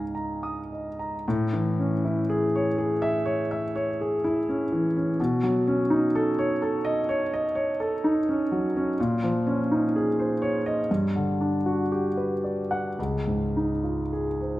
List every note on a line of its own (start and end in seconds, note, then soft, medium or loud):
0.00 1.27 G#2 soft
0.00 1.27 D#4 soft
0.00 0.72 D#5 soft
0.00 1.27 F5 soft
0.00 0.14 G#5 soft
0.00 0.15 A#5 soft
0.00 0.43 D#6 soft
0.15 0.59 A#5 soft
0.43 0.88 D#6 soft
0.72 1.15 D#5 soft
0.99 1.25 A#5 soft
1.28 5.16 A2 medium
1.53 1.93 E3 medium
1.80 2.19 C#4 soft
2.05 2.44 E4 soft
2.30 2.68 G#4 medium
2.56 2.93 C#5 soft
2.78 3.16 G#4 medium
3.02 3.40 E5 medium
3.26 3.64 C#5 medium
3.51 3.89 E5 medium
3.76 4.14 C#5 medium
4.01 4.39 G#4 soft
4.24 4.62 E4 medium
4.49 4.86 C#4 soft
4.72 5.10 E3 soft
4.97 5.20 C#4 soft
5.20 8.94 B2 medium
5.43 5.81 F#3 medium
5.68 6.05 C#4 medium
5.90 6.28 D#4 medium
6.15 6.52 A4 medium
6.39 6.75 C#5 medium
6.62 6.99 A4 medium
6.85 7.21 D#5 medium
7.09 7.46 C#5 medium
7.34 7.70 D#5 medium
7.55 7.94 C#5 medium
7.80 8.18 A4 medium
8.04 8.42 D#4 medium
8.29 8.66 C#4 medium
8.52 8.89 F#3 soft
8.77 8.99 C#4 medium
9.00 10.86 A#2 medium
9.24 9.60 F3 soft
9.47 9.84 C#4 medium
9.71 10.08 D#4 soft
9.96 10.32 G#4 medium
10.19 10.56 C5 soft
10.42 10.80 C#5 medium
10.66 10.90 D#5 medium
10.91 12.95 G2 medium
11.16 11.56 D3 soft
11.41 11.81 D4 soft
11.66 12.07 F#4 soft
11.92 12.33 G4 soft
12.17 12.60 B4 soft
12.44 12.87 D5 soft
12.71 12.98 F#5 medium
12.99 14.60 C#2 soft
13.27 13.71 G#2 soft
13.57 14.00 D#4 soft
13.84 14.28 F4 soft
14.13 14.57 G#4 soft
14.41 14.60 C5 soft